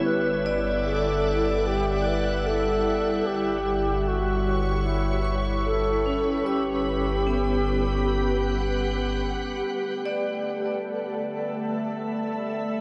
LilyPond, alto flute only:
\new Staff \with { instrumentName = "Alto flute" } { \time 4/4 \key g \lydian \tempo 4 = 75 b'8 r8 a'4 g'8 b'8 a'4 | g'4 fis'4 e'8 r8 a'4 | g'2.~ g'8 r8 | r1 | }